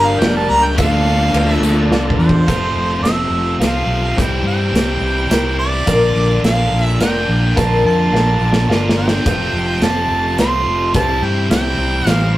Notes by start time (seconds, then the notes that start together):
Already playing: G1 G3 A#3 D4 G4 A#4 D5
0.06 F5
0.20 F1 G3 A#3 D4 G4 A#4 G5, snare, ride
0.24 A#4 F5
0.37 A5
0.49 C#2 A#5, tambourine
0.64 G5
0.74 D2 D3 D4 F4 A4 D5, ride, tambourine
0.78 D3 F3 D4 F4 A4 D5 F5, kick
0.93 tambourine
1.07 tambourine
1.33 D2 F3 D4 F4 A4 C5, ride
1.38 A4
1.49 E5, tambourine
1.61 D2, tambourine
1.89 C2 F3 D4 F4 A4 D5, snare
1.94 F4 A4
2.10 kick
2.18 E2 C5, tambourine
2.29 kick
2.46 F1 F2 C3 F3 A3 C4 F4 A4 C5, kick, closed hi-hat
2.75 F1
3.03 F1 F3 C4 F4 A4 C5 E5, snare, closed hi-hat
3.07 A4
3.30 F1
3.59 C2 F2 C3 F3 A3 F4 A4 C5, snare, closed hi-hat
3.63 C4 F4 A4 F5
3.86 B1
3.90 C4 F4 A4
4.17 C2 C3 E3 G3 C4 E4 G4 C5 G5, kick, closed hi-hat
4.43 G2
4.47 G5
4.72 C2 G3 C4 E4 G4, closed hi-hat
4.76 E4 C5, snare
5.00 C2
5.28 C2 C3 E3 G3 C4 E4 G4 A#4 C5, snare, closed hi-hat
5.58 C4 E4 C5 D5
5.86 A#1 A#2 D3 F3 A#3 D4 F4 A#4 D5, kick, closed hi-hat
6.15 A#1
6.42 A#1 F3 A#3 D4 F4 A#4 F5, snare, closed hi-hat
6.46 D5
6.71 A#1 F3 A#3 D4 A#4
6.83 E5
6.99 F1 A#2 D3 F3 A#3 F4 A#4 D5 G5, snare, closed hi-hat
7.03 D4 F4 A#4
7.28 A#1
7.56 A#1 A#2 D3 F3 F4 A#4 C5 A5, kick, closed hi-hat
7.60 A#3 D4 A#4
7.83 F2 A5
8.11 A#1 F3 A#3 F4 A#4 D5
8.15 D4 A#4, snare
8.40 A#1 F3 A#3 D4 A#4
8.53 snare
8.68 G1 A#2 D3 F3 A#3 D4 F4 A#4 D5, snare
8.72 F4 A#4
8.89 snare
8.98 F3 A#3 D4 A#4 G5
9.08 snare
9.25 F1 F2 C3 F3 A3 C4 F4 A4 C5, kick, closed hi-hat
9.53 F1
9.82 F1 F3 C4 F4 A4 C5 A5, snare, closed hi-hat
10.10 F1 C4 F4 A4
10.38 C2 F2 C3 F3 A3 C4 F4 A4 C5 C6, snare, closed hi-hat
10.66 F1
10.93 C2 C3 E3 G3 C4 E4 G4 C5 A5, kick, closed hi-hat
11.22 G2 G5
11.49 C2 G3 C4 E4 G4 C5 G5, snare, closed hi-hat
11.54 C5
11.77 C2 E4 C5
11.82 C4
12.05 A1 C3 E3 G3 C4 E4 G4 C5 F5, snare, closed hi-hat
12.10 E4 C5